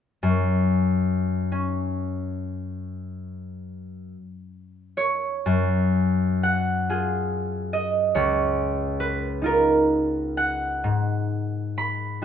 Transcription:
0.23 F#2
1.52 C#4
4.97 C#5
5.46 F#2
6.43 F#5
6.89 F4 G#4
7.73 D#5
8.15 C#2 C#5
9.00 B4
9.42 D#4 F4
9.46 A#4
10.37 F#5
10.84 G#2
11.78 B5
12.22 D#4

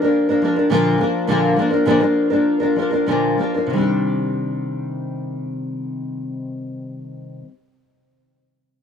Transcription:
0.02 F3 A#3 D4 A#4
0.29 F3 A#3 D4 A#4
0.42 F3 A#3 D4 A#4
0.56 F3 A#3 D4 A#4
0.70 A#2 D3 F3 A#3 D4 A#4
0.98 F3 A#3 D4 A#4
1.27 A#2 D3 F3 A#3 D4 A#4
1.56 F3 A#3 D4 A#4
1.71 F3 A#3 D4 A#4
1.85 A#2 D3 F3 A#3 D4 A#4
2.00 F3 A#3 D4 A#4
2.30 F3 A#3 D4 A#4
2.60 F3 A#3 D4 A#4
2.76 F3 A#3 D4 A#4
2.91 F3 A#3 D4 A#4
3.06 A#2 D3 F3 A#3 D4 A#4
3.38 F3 A#3 D4 A#4
3.54 F3 A#3 D4 A#4
3.67 C3 D#3
3.73 G3 C4
3.78 D4 G4

